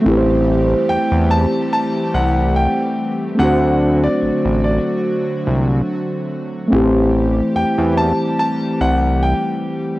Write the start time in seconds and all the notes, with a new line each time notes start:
Already playing: A3 C4
0.02 A1 E3 A3 C4 G4
0.06 G3 E4 G4
0.11 B4
0.18 C5
0.89 E2 G5
1.11 E2
1.31 A5
1.73 A5
2.14 C2 F#5
2.56 G5
3.35 D2 A3 C4
3.39 D3 F#3 D4 F#4 F#5
3.44 C5
4.04 D5
4.22 A1
4.45 A1
4.64 D5
5.47 C2
6.68 A3 C4
6.72 A1 E3 G3 E4 G4
6.77 B4
6.84 C5
7.55 E2 G5
7.78 E2
7.98 A5
8.39 A5
8.81 C2 F#5
9.23 G5